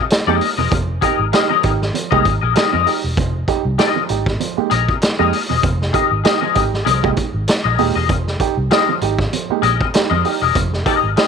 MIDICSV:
0, 0, Header, 1, 6, 480
1, 0, Start_track
1, 0, Key_signature, -4, "minor"
1, 0, Tempo, 614754
1, 561, Time_signature, 4, 2, 24, 8
1, 8804, End_track
2, 0, Start_track
2, 0, Title_t, "Clean electric guitar"
2, 0, Program_c, 0, 27
2, 212, Note_on_c, 0, 75, 90
2, 219, Note_on_c, 0, 70, 77
2, 224, Note_on_c, 0, 68, 65
2, 367, Note_off_c, 0, 75, 0
2, 370, Note_off_c, 0, 70, 0
2, 373, Note_off_c, 0, 68, 0
2, 449, Note_on_c, 0, 75, 65
2, 458, Note_on_c, 0, 70, 68
2, 466, Note_on_c, 0, 68, 55
2, 566, Note_off_c, 0, 75, 0
2, 571, Note_off_c, 0, 70, 0
2, 574, Note_off_c, 0, 68, 0
2, 791, Note_on_c, 0, 68, 80
2, 799, Note_on_c, 0, 70, 89
2, 805, Note_on_c, 0, 75, 79
2, 968, Note_off_c, 0, 68, 0
2, 971, Note_off_c, 0, 70, 0
2, 975, Note_off_c, 0, 75, 0
2, 1032, Note_on_c, 0, 68, 58
2, 1040, Note_on_c, 0, 70, 72
2, 1044, Note_on_c, 0, 75, 64
2, 1158, Note_off_c, 0, 75, 0
2, 1165, Note_off_c, 0, 70, 0
2, 1167, Note_on_c, 0, 75, 83
2, 1170, Note_off_c, 0, 68, 0
2, 1174, Note_on_c, 0, 70, 88
2, 1180, Note_on_c, 0, 68, 73
2, 1324, Note_off_c, 0, 75, 0
2, 1327, Note_off_c, 0, 70, 0
2, 1330, Note_off_c, 0, 68, 0
2, 1646, Note_on_c, 0, 75, 89
2, 1651, Note_on_c, 0, 70, 80
2, 1661, Note_on_c, 0, 68, 75
2, 1803, Note_off_c, 0, 75, 0
2, 1805, Note_off_c, 0, 70, 0
2, 1811, Note_off_c, 0, 68, 0
2, 1885, Note_on_c, 0, 75, 64
2, 1893, Note_on_c, 0, 70, 62
2, 1899, Note_on_c, 0, 68, 58
2, 1985, Note_off_c, 0, 68, 0
2, 1989, Note_off_c, 0, 70, 0
2, 1994, Note_on_c, 0, 68, 62
2, 1996, Note_off_c, 0, 75, 0
2, 1998, Note_on_c, 0, 70, 62
2, 2005, Note_on_c, 0, 75, 81
2, 2121, Note_off_c, 0, 75, 0
2, 2127, Note_off_c, 0, 70, 0
2, 2130, Note_on_c, 0, 75, 85
2, 2133, Note_off_c, 0, 68, 0
2, 2136, Note_on_c, 0, 70, 72
2, 2142, Note_on_c, 0, 68, 67
2, 2285, Note_off_c, 0, 75, 0
2, 2288, Note_off_c, 0, 70, 0
2, 2291, Note_off_c, 0, 68, 0
2, 2954, Note_on_c, 0, 68, 74
2, 2962, Note_on_c, 0, 70, 76
2, 2967, Note_on_c, 0, 75, 92
2, 3128, Note_off_c, 0, 68, 0
2, 3132, Note_off_c, 0, 70, 0
2, 3134, Note_off_c, 0, 75, 0
2, 3669, Note_on_c, 0, 68, 80
2, 3679, Note_on_c, 0, 70, 84
2, 3684, Note_on_c, 0, 75, 87
2, 3845, Note_off_c, 0, 68, 0
2, 3850, Note_off_c, 0, 70, 0
2, 3852, Note_off_c, 0, 75, 0
2, 4053, Note_on_c, 0, 75, 85
2, 4060, Note_on_c, 0, 70, 74
2, 4065, Note_on_c, 0, 68, 67
2, 4205, Note_off_c, 0, 75, 0
2, 4209, Note_off_c, 0, 70, 0
2, 4212, Note_off_c, 0, 68, 0
2, 4288, Note_on_c, 0, 75, 58
2, 4294, Note_on_c, 0, 70, 51
2, 4302, Note_on_c, 0, 68, 52
2, 4403, Note_off_c, 0, 75, 0
2, 4407, Note_off_c, 0, 70, 0
2, 4411, Note_off_c, 0, 68, 0
2, 4630, Note_on_c, 0, 68, 71
2, 4638, Note_on_c, 0, 70, 78
2, 4646, Note_on_c, 0, 75, 81
2, 4806, Note_off_c, 0, 68, 0
2, 4810, Note_off_c, 0, 70, 0
2, 4814, Note_off_c, 0, 75, 0
2, 4869, Note_on_c, 0, 68, 66
2, 4878, Note_on_c, 0, 70, 69
2, 4882, Note_on_c, 0, 75, 84
2, 4995, Note_off_c, 0, 75, 0
2, 5001, Note_off_c, 0, 70, 0
2, 5004, Note_on_c, 0, 75, 75
2, 5007, Note_off_c, 0, 68, 0
2, 5010, Note_on_c, 0, 70, 65
2, 5017, Note_on_c, 0, 68, 70
2, 5162, Note_off_c, 0, 75, 0
2, 5165, Note_off_c, 0, 70, 0
2, 5168, Note_off_c, 0, 68, 0
2, 5348, Note_on_c, 0, 68, 86
2, 5356, Note_on_c, 0, 70, 77
2, 5359, Note_on_c, 0, 75, 91
2, 5525, Note_off_c, 0, 68, 0
2, 5529, Note_off_c, 0, 70, 0
2, 5531, Note_off_c, 0, 75, 0
2, 5967, Note_on_c, 0, 75, 74
2, 5977, Note_on_c, 0, 70, 62
2, 5981, Note_on_c, 0, 68, 66
2, 6123, Note_off_c, 0, 75, 0
2, 6129, Note_off_c, 0, 70, 0
2, 6131, Note_off_c, 0, 68, 0
2, 6211, Note_on_c, 0, 75, 66
2, 6221, Note_on_c, 0, 70, 55
2, 6227, Note_on_c, 0, 68, 55
2, 6326, Note_off_c, 0, 75, 0
2, 6331, Note_off_c, 0, 70, 0
2, 6334, Note_off_c, 0, 68, 0
2, 6799, Note_on_c, 0, 68, 79
2, 6805, Note_on_c, 0, 70, 82
2, 6811, Note_on_c, 0, 75, 95
2, 6971, Note_off_c, 0, 68, 0
2, 6974, Note_off_c, 0, 70, 0
2, 6977, Note_off_c, 0, 75, 0
2, 7512, Note_on_c, 0, 68, 88
2, 7517, Note_on_c, 0, 70, 81
2, 7524, Note_on_c, 0, 75, 94
2, 7688, Note_off_c, 0, 68, 0
2, 7691, Note_off_c, 0, 70, 0
2, 7694, Note_off_c, 0, 75, 0
2, 7885, Note_on_c, 0, 75, 83
2, 7892, Note_on_c, 0, 70, 87
2, 7897, Note_on_c, 0, 68, 68
2, 8043, Note_off_c, 0, 75, 0
2, 8047, Note_off_c, 0, 70, 0
2, 8050, Note_off_c, 0, 68, 0
2, 8133, Note_on_c, 0, 75, 60
2, 8140, Note_on_c, 0, 70, 66
2, 8147, Note_on_c, 0, 68, 60
2, 8248, Note_off_c, 0, 75, 0
2, 8252, Note_off_c, 0, 70, 0
2, 8255, Note_off_c, 0, 68, 0
2, 8479, Note_on_c, 0, 68, 80
2, 8484, Note_on_c, 0, 70, 98
2, 8493, Note_on_c, 0, 75, 94
2, 8653, Note_off_c, 0, 68, 0
2, 8655, Note_off_c, 0, 70, 0
2, 8659, Note_off_c, 0, 75, 0
2, 8716, Note_on_c, 0, 68, 69
2, 8723, Note_on_c, 0, 70, 73
2, 8728, Note_on_c, 0, 75, 74
2, 8804, Note_off_c, 0, 68, 0
2, 8804, Note_off_c, 0, 70, 0
2, 8804, Note_off_c, 0, 75, 0
2, 8804, End_track
3, 0, Start_track
3, 0, Title_t, "Upright piano"
3, 0, Program_c, 1, 0
3, 215, Note_on_c, 1, 56, 75
3, 218, Note_on_c, 1, 58, 72
3, 219, Note_on_c, 1, 63, 71
3, 220, Note_on_c, 1, 67, 84
3, 301, Note_off_c, 1, 56, 0
3, 302, Note_off_c, 1, 58, 0
3, 303, Note_off_c, 1, 63, 0
3, 303, Note_off_c, 1, 67, 0
3, 456, Note_on_c, 1, 53, 53
3, 541, Note_off_c, 1, 53, 0
3, 560, Note_on_c, 1, 53, 53
3, 669, Note_off_c, 1, 53, 0
3, 798, Note_on_c, 1, 63, 74
3, 802, Note_on_c, 1, 67, 81
3, 908, Note_off_c, 1, 63, 0
3, 910, Note_off_c, 1, 67, 0
3, 1035, Note_on_c, 1, 63, 76
3, 1040, Note_on_c, 1, 67, 84
3, 1146, Note_off_c, 1, 63, 0
3, 1148, Note_off_c, 1, 67, 0
3, 1171, Note_on_c, 1, 53, 56
3, 1258, Note_off_c, 1, 53, 0
3, 1276, Note_on_c, 1, 63, 73
3, 1280, Note_on_c, 1, 67, 81
3, 1386, Note_off_c, 1, 63, 0
3, 1388, Note_off_c, 1, 67, 0
3, 1516, Note_on_c, 1, 53, 57
3, 1626, Note_off_c, 1, 53, 0
3, 1650, Note_on_c, 1, 56, 80
3, 1652, Note_on_c, 1, 58, 69
3, 1653, Note_on_c, 1, 63, 69
3, 1655, Note_on_c, 1, 67, 85
3, 1737, Note_off_c, 1, 56, 0
3, 1738, Note_off_c, 1, 58, 0
3, 1738, Note_off_c, 1, 63, 0
3, 1739, Note_off_c, 1, 67, 0
3, 1758, Note_on_c, 1, 63, 24
3, 1759, Note_on_c, 1, 67, 28
3, 1812, Note_off_c, 1, 63, 0
3, 1812, Note_off_c, 1, 67, 0
3, 1993, Note_on_c, 1, 63, 74
3, 1998, Note_on_c, 1, 67, 80
3, 2105, Note_off_c, 1, 63, 0
3, 2107, Note_off_c, 1, 67, 0
3, 2130, Note_on_c, 1, 53, 62
3, 2217, Note_off_c, 1, 53, 0
3, 2234, Note_on_c, 1, 63, 64
3, 2238, Note_on_c, 1, 67, 64
3, 2345, Note_off_c, 1, 63, 0
3, 2347, Note_off_c, 1, 67, 0
3, 2475, Note_on_c, 1, 53, 56
3, 2585, Note_off_c, 1, 53, 0
3, 2717, Note_on_c, 1, 63, 73
3, 2721, Note_on_c, 1, 67, 83
3, 2826, Note_off_c, 1, 63, 0
3, 2828, Note_off_c, 1, 67, 0
3, 2956, Note_on_c, 1, 63, 76
3, 2959, Note_on_c, 1, 67, 81
3, 3065, Note_off_c, 1, 63, 0
3, 3067, Note_off_c, 1, 67, 0
3, 3090, Note_on_c, 1, 53, 60
3, 3177, Note_off_c, 1, 53, 0
3, 3194, Note_on_c, 1, 63, 71
3, 3199, Note_on_c, 1, 67, 71
3, 3304, Note_off_c, 1, 63, 0
3, 3307, Note_off_c, 1, 67, 0
3, 3436, Note_on_c, 1, 53, 59
3, 3545, Note_off_c, 1, 53, 0
3, 3569, Note_on_c, 1, 56, 76
3, 3570, Note_on_c, 1, 58, 71
3, 3571, Note_on_c, 1, 63, 64
3, 3575, Note_on_c, 1, 67, 83
3, 3656, Note_off_c, 1, 56, 0
3, 3656, Note_off_c, 1, 58, 0
3, 3657, Note_off_c, 1, 63, 0
3, 3659, Note_off_c, 1, 67, 0
3, 3677, Note_on_c, 1, 63, 26
3, 3677, Note_on_c, 1, 67, 27
3, 3731, Note_off_c, 1, 63, 0
3, 3731, Note_off_c, 1, 67, 0
3, 4048, Note_on_c, 1, 56, 80
3, 4051, Note_on_c, 1, 58, 70
3, 4052, Note_on_c, 1, 63, 73
3, 4053, Note_on_c, 1, 67, 85
3, 4136, Note_off_c, 1, 56, 0
3, 4137, Note_off_c, 1, 58, 0
3, 4138, Note_off_c, 1, 63, 0
3, 4138, Note_off_c, 1, 67, 0
3, 4290, Note_on_c, 1, 53, 51
3, 4376, Note_off_c, 1, 53, 0
3, 4394, Note_on_c, 1, 53, 53
3, 4505, Note_off_c, 1, 53, 0
3, 4631, Note_on_c, 1, 63, 70
3, 4636, Note_on_c, 1, 67, 80
3, 4743, Note_off_c, 1, 63, 0
3, 4746, Note_off_c, 1, 67, 0
3, 4875, Note_on_c, 1, 63, 75
3, 4880, Note_on_c, 1, 67, 83
3, 4985, Note_off_c, 1, 63, 0
3, 4988, Note_off_c, 1, 67, 0
3, 5010, Note_on_c, 1, 53, 65
3, 5097, Note_off_c, 1, 53, 0
3, 5112, Note_on_c, 1, 63, 72
3, 5117, Note_on_c, 1, 67, 83
3, 5224, Note_off_c, 1, 63, 0
3, 5226, Note_off_c, 1, 67, 0
3, 5357, Note_on_c, 1, 53, 63
3, 5466, Note_off_c, 1, 53, 0
3, 5491, Note_on_c, 1, 56, 82
3, 5492, Note_on_c, 1, 58, 66
3, 5492, Note_on_c, 1, 63, 61
3, 5495, Note_on_c, 1, 67, 82
3, 5577, Note_off_c, 1, 56, 0
3, 5578, Note_off_c, 1, 58, 0
3, 5578, Note_off_c, 1, 63, 0
3, 5579, Note_off_c, 1, 67, 0
3, 5599, Note_on_c, 1, 63, 24
3, 5599, Note_on_c, 1, 67, 29
3, 5652, Note_off_c, 1, 67, 0
3, 5653, Note_off_c, 1, 63, 0
3, 6079, Note_on_c, 1, 56, 88
3, 6079, Note_on_c, 1, 58, 85
3, 6080, Note_on_c, 1, 63, 79
3, 6082, Note_on_c, 1, 67, 90
3, 6187, Note_off_c, 1, 56, 0
3, 6188, Note_off_c, 1, 58, 0
3, 6188, Note_off_c, 1, 63, 0
3, 6189, Note_off_c, 1, 67, 0
3, 6320, Note_on_c, 1, 53, 52
3, 6428, Note_off_c, 1, 53, 0
3, 6560, Note_on_c, 1, 63, 77
3, 6564, Note_on_c, 1, 67, 87
3, 6668, Note_off_c, 1, 63, 0
3, 6671, Note_off_c, 1, 67, 0
3, 6801, Note_on_c, 1, 63, 78
3, 6807, Note_on_c, 1, 67, 86
3, 6909, Note_off_c, 1, 63, 0
3, 6912, Note_off_c, 1, 67, 0
3, 6939, Note_on_c, 1, 53, 70
3, 7022, Note_off_c, 1, 53, 0
3, 7041, Note_on_c, 1, 63, 80
3, 7047, Note_on_c, 1, 67, 82
3, 7149, Note_off_c, 1, 63, 0
3, 7152, Note_off_c, 1, 67, 0
3, 7285, Note_on_c, 1, 53, 56
3, 7391, Note_off_c, 1, 53, 0
3, 7418, Note_on_c, 1, 56, 83
3, 7421, Note_on_c, 1, 58, 70
3, 7421, Note_on_c, 1, 63, 71
3, 7422, Note_on_c, 1, 67, 86
3, 7502, Note_off_c, 1, 56, 0
3, 7503, Note_off_c, 1, 58, 0
3, 7503, Note_off_c, 1, 63, 0
3, 7504, Note_off_c, 1, 67, 0
3, 7529, Note_on_c, 1, 63, 25
3, 7529, Note_on_c, 1, 67, 27
3, 7578, Note_off_c, 1, 63, 0
3, 7578, Note_off_c, 1, 67, 0
3, 7763, Note_on_c, 1, 63, 75
3, 7769, Note_on_c, 1, 67, 73
3, 7870, Note_off_c, 1, 63, 0
3, 7873, Note_off_c, 1, 67, 0
3, 7898, Note_on_c, 1, 53, 59
3, 7982, Note_off_c, 1, 53, 0
3, 7999, Note_on_c, 1, 63, 65
3, 8005, Note_on_c, 1, 67, 79
3, 8109, Note_off_c, 1, 63, 0
3, 8112, Note_off_c, 1, 67, 0
3, 8244, Note_on_c, 1, 53, 54
3, 8352, Note_off_c, 1, 53, 0
3, 8480, Note_on_c, 1, 63, 72
3, 8483, Note_on_c, 1, 67, 77
3, 8590, Note_off_c, 1, 63, 0
3, 8591, Note_off_c, 1, 67, 0
3, 8720, Note_on_c, 1, 63, 67
3, 8725, Note_on_c, 1, 67, 77
3, 8804, Note_off_c, 1, 63, 0
3, 8804, Note_off_c, 1, 67, 0
3, 8804, End_track
4, 0, Start_track
4, 0, Title_t, "Fingered electric bass"
4, 0, Program_c, 2, 33
4, 213, Note_on_c, 2, 41, 86
4, 304, Note_off_c, 2, 41, 0
4, 453, Note_on_c, 2, 28, 77
4, 544, Note_off_c, 2, 28, 0
4, 560, Note_on_c, 2, 29, 99
4, 765, Note_off_c, 2, 29, 0
4, 931, Note_on_c, 2, 32, 89
4, 1022, Note_off_c, 2, 32, 0
4, 1280, Note_on_c, 2, 32, 92
4, 1484, Note_off_c, 2, 32, 0
4, 1654, Note_on_c, 2, 36, 84
4, 1744, Note_off_c, 2, 36, 0
4, 1760, Note_on_c, 2, 32, 90
4, 1874, Note_off_c, 2, 32, 0
4, 1895, Note_on_c, 2, 34, 94
4, 1984, Note_off_c, 2, 34, 0
4, 2137, Note_on_c, 2, 41, 84
4, 2225, Note_off_c, 2, 41, 0
4, 2374, Note_on_c, 2, 28, 81
4, 2478, Note_off_c, 2, 28, 0
4, 2478, Note_on_c, 2, 29, 108
4, 2683, Note_off_c, 2, 29, 0
4, 2851, Note_on_c, 2, 36, 86
4, 2941, Note_off_c, 2, 36, 0
4, 3201, Note_on_c, 2, 32, 89
4, 3404, Note_off_c, 2, 32, 0
4, 3680, Note_on_c, 2, 34, 85
4, 3794, Note_off_c, 2, 34, 0
4, 4057, Note_on_c, 2, 41, 86
4, 4145, Note_off_c, 2, 41, 0
4, 4297, Note_on_c, 2, 28, 70
4, 4385, Note_off_c, 2, 28, 0
4, 4399, Note_on_c, 2, 29, 109
4, 4603, Note_off_c, 2, 29, 0
4, 4774, Note_on_c, 2, 32, 83
4, 4863, Note_off_c, 2, 32, 0
4, 5121, Note_on_c, 2, 32, 79
4, 5324, Note_off_c, 2, 32, 0
4, 5360, Note_on_c, 2, 36, 74
4, 5564, Note_off_c, 2, 36, 0
4, 5733, Note_on_c, 2, 32, 99
4, 5823, Note_off_c, 2, 32, 0
4, 5974, Note_on_c, 2, 34, 94
4, 6063, Note_off_c, 2, 34, 0
4, 6078, Note_on_c, 2, 27, 84
4, 6193, Note_off_c, 2, 27, 0
4, 6214, Note_on_c, 2, 28, 89
4, 6317, Note_off_c, 2, 28, 0
4, 6317, Note_on_c, 2, 29, 112
4, 6523, Note_off_c, 2, 29, 0
4, 6693, Note_on_c, 2, 36, 83
4, 6783, Note_off_c, 2, 36, 0
4, 7039, Note_on_c, 2, 32, 94
4, 7244, Note_off_c, 2, 32, 0
4, 7516, Note_on_c, 2, 34, 84
4, 7632, Note_off_c, 2, 34, 0
4, 7893, Note_on_c, 2, 41, 95
4, 7984, Note_off_c, 2, 41, 0
4, 8134, Note_on_c, 2, 28, 73
4, 8225, Note_off_c, 2, 28, 0
4, 8241, Note_on_c, 2, 29, 112
4, 8446, Note_off_c, 2, 29, 0
4, 8616, Note_on_c, 2, 32, 79
4, 8707, Note_off_c, 2, 32, 0
4, 8804, End_track
5, 0, Start_track
5, 0, Title_t, "Muted fingered electric bass strokes"
5, 3574, Note_on_c, 9, 29, 49
5, 3652, Note_off_c, 9, 29, 0
5, 7414, Note_on_c, 9, 29, 47
5, 7492, Note_off_c, 9, 29, 0
5, 8804, End_track
6, 0, Start_track
6, 0, Title_t, "Drums"
6, 80, Note_on_c, 9, 42, 103
6, 92, Note_on_c, 9, 38, 112
6, 159, Note_off_c, 9, 42, 0
6, 170, Note_off_c, 9, 38, 0
6, 320, Note_on_c, 9, 46, 72
6, 398, Note_off_c, 9, 46, 0
6, 560, Note_on_c, 9, 36, 127
6, 563, Note_on_c, 9, 42, 106
6, 638, Note_off_c, 9, 36, 0
6, 641, Note_off_c, 9, 42, 0
6, 798, Note_on_c, 9, 36, 90
6, 799, Note_on_c, 9, 42, 70
6, 876, Note_off_c, 9, 36, 0
6, 877, Note_off_c, 9, 42, 0
6, 1038, Note_on_c, 9, 42, 88
6, 1044, Note_on_c, 9, 38, 96
6, 1116, Note_off_c, 9, 42, 0
6, 1122, Note_off_c, 9, 38, 0
6, 1274, Note_on_c, 9, 42, 73
6, 1280, Note_on_c, 9, 36, 96
6, 1352, Note_off_c, 9, 42, 0
6, 1358, Note_off_c, 9, 36, 0
6, 1421, Note_on_c, 9, 38, 40
6, 1499, Note_off_c, 9, 38, 0
6, 1521, Note_on_c, 9, 42, 79
6, 1599, Note_off_c, 9, 42, 0
6, 1656, Note_on_c, 9, 36, 93
6, 1734, Note_off_c, 9, 36, 0
6, 1757, Note_on_c, 9, 42, 74
6, 1760, Note_on_c, 9, 36, 93
6, 1835, Note_off_c, 9, 42, 0
6, 1838, Note_off_c, 9, 36, 0
6, 1995, Note_on_c, 9, 42, 100
6, 2007, Note_on_c, 9, 38, 117
6, 2073, Note_off_c, 9, 42, 0
6, 2085, Note_off_c, 9, 38, 0
6, 2239, Note_on_c, 9, 46, 71
6, 2317, Note_off_c, 9, 46, 0
6, 2478, Note_on_c, 9, 36, 127
6, 2480, Note_on_c, 9, 42, 102
6, 2556, Note_off_c, 9, 36, 0
6, 2558, Note_off_c, 9, 42, 0
6, 2716, Note_on_c, 9, 36, 93
6, 2718, Note_on_c, 9, 42, 75
6, 2794, Note_off_c, 9, 36, 0
6, 2796, Note_off_c, 9, 42, 0
6, 2956, Note_on_c, 9, 42, 89
6, 2962, Note_on_c, 9, 38, 101
6, 3034, Note_off_c, 9, 42, 0
6, 3040, Note_off_c, 9, 38, 0
6, 3192, Note_on_c, 9, 42, 72
6, 3270, Note_off_c, 9, 42, 0
6, 3329, Note_on_c, 9, 36, 110
6, 3338, Note_on_c, 9, 38, 40
6, 3407, Note_off_c, 9, 36, 0
6, 3417, Note_off_c, 9, 38, 0
6, 3439, Note_on_c, 9, 42, 84
6, 3517, Note_off_c, 9, 42, 0
6, 3675, Note_on_c, 9, 42, 77
6, 3753, Note_off_c, 9, 42, 0
6, 3814, Note_on_c, 9, 36, 86
6, 3892, Note_off_c, 9, 36, 0
6, 3916, Note_on_c, 9, 42, 105
6, 3928, Note_on_c, 9, 38, 116
6, 3994, Note_off_c, 9, 42, 0
6, 4006, Note_off_c, 9, 38, 0
6, 4160, Note_on_c, 9, 46, 79
6, 4239, Note_off_c, 9, 46, 0
6, 4399, Note_on_c, 9, 36, 117
6, 4399, Note_on_c, 9, 42, 110
6, 4477, Note_off_c, 9, 36, 0
6, 4477, Note_off_c, 9, 42, 0
6, 4542, Note_on_c, 9, 38, 37
6, 4620, Note_off_c, 9, 38, 0
6, 4637, Note_on_c, 9, 36, 97
6, 4639, Note_on_c, 9, 42, 69
6, 4716, Note_off_c, 9, 36, 0
6, 4718, Note_off_c, 9, 42, 0
6, 4877, Note_on_c, 9, 42, 88
6, 4883, Note_on_c, 9, 38, 110
6, 4955, Note_off_c, 9, 42, 0
6, 4961, Note_off_c, 9, 38, 0
6, 5116, Note_on_c, 9, 42, 84
6, 5122, Note_on_c, 9, 36, 99
6, 5194, Note_off_c, 9, 42, 0
6, 5200, Note_off_c, 9, 36, 0
6, 5261, Note_on_c, 9, 38, 39
6, 5339, Note_off_c, 9, 38, 0
6, 5361, Note_on_c, 9, 42, 92
6, 5439, Note_off_c, 9, 42, 0
6, 5496, Note_on_c, 9, 36, 98
6, 5574, Note_off_c, 9, 36, 0
6, 5595, Note_on_c, 9, 42, 73
6, 5601, Note_on_c, 9, 36, 94
6, 5673, Note_off_c, 9, 42, 0
6, 5679, Note_off_c, 9, 36, 0
6, 5838, Note_on_c, 9, 42, 109
6, 5849, Note_on_c, 9, 38, 111
6, 5916, Note_off_c, 9, 42, 0
6, 5927, Note_off_c, 9, 38, 0
6, 6078, Note_on_c, 9, 46, 73
6, 6156, Note_off_c, 9, 46, 0
6, 6319, Note_on_c, 9, 36, 119
6, 6319, Note_on_c, 9, 42, 96
6, 6397, Note_off_c, 9, 36, 0
6, 6397, Note_off_c, 9, 42, 0
6, 6460, Note_on_c, 9, 38, 35
6, 6538, Note_off_c, 9, 38, 0
6, 6558, Note_on_c, 9, 36, 100
6, 6558, Note_on_c, 9, 42, 80
6, 6636, Note_off_c, 9, 36, 0
6, 6636, Note_off_c, 9, 42, 0
6, 6800, Note_on_c, 9, 42, 79
6, 6805, Note_on_c, 9, 38, 111
6, 6878, Note_off_c, 9, 42, 0
6, 6883, Note_off_c, 9, 38, 0
6, 7038, Note_on_c, 9, 42, 71
6, 7116, Note_off_c, 9, 42, 0
6, 7172, Note_on_c, 9, 36, 106
6, 7183, Note_on_c, 9, 38, 38
6, 7250, Note_off_c, 9, 36, 0
6, 7261, Note_off_c, 9, 38, 0
6, 7283, Note_on_c, 9, 42, 84
6, 7362, Note_off_c, 9, 42, 0
6, 7519, Note_on_c, 9, 42, 79
6, 7597, Note_off_c, 9, 42, 0
6, 7657, Note_on_c, 9, 36, 100
6, 7735, Note_off_c, 9, 36, 0
6, 7760, Note_on_c, 9, 42, 105
6, 7771, Note_on_c, 9, 38, 119
6, 7838, Note_off_c, 9, 42, 0
6, 7849, Note_off_c, 9, 38, 0
6, 8001, Note_on_c, 9, 46, 76
6, 8079, Note_off_c, 9, 46, 0
6, 8240, Note_on_c, 9, 36, 126
6, 8241, Note_on_c, 9, 42, 95
6, 8318, Note_off_c, 9, 36, 0
6, 8319, Note_off_c, 9, 42, 0
6, 8381, Note_on_c, 9, 38, 36
6, 8459, Note_off_c, 9, 38, 0
6, 8479, Note_on_c, 9, 36, 105
6, 8479, Note_on_c, 9, 42, 77
6, 8557, Note_off_c, 9, 36, 0
6, 8557, Note_off_c, 9, 42, 0
6, 8721, Note_on_c, 9, 42, 80
6, 8727, Note_on_c, 9, 38, 102
6, 8799, Note_off_c, 9, 42, 0
6, 8804, Note_off_c, 9, 38, 0
6, 8804, End_track
0, 0, End_of_file